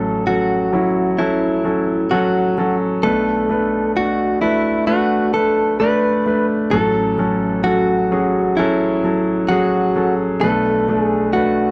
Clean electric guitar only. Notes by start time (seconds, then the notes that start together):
Already playing: A4
0.27 F#4
1.18 E4
2.11 F#4
3.03 A4
3.97 F#4
4.41 E4
4.87 F#4
5.34 A4
5.80 B4
6.71 A4
7.64 F#4
8.57 E4
9.49 F#4
10.41 A4
11.01 G#4
11.33 F#4